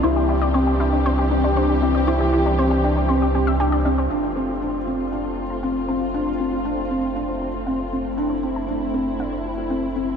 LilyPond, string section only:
\new Staff \with { instrumentName = "String section" } { \time 4/4 \key f \major \tempo 4 = 118 << { <e g g'>1~ | <e g g'>1 | f'1~ | f'1 |
e'1 | } \\ { <c' d'>1~ | <c' d'>1 | <a c'>1~ | <a c'>1~ |
<a c'>1 | } >> }